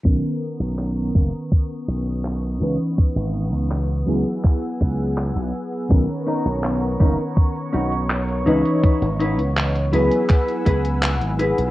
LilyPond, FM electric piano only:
\new Staff \with { instrumentName = "FM electric piano" } { \time 4/4 \key b \major \tempo 4 = 82 <dis b cis' ais'>2.~ <dis b cis' ais'>8 <e cis' dis' b'>8~ | <e cis' dis' b'>4. <fis b e' gis'>2~ <fis b e' gis'>8 | <dis b cis' ais'>2.~ <dis b cis' ais'>8 <e cis' b' dis''>8~ | <e cis' b' dis''>4. <fis b e' gis'>2~ <fis b e' gis'>8 | }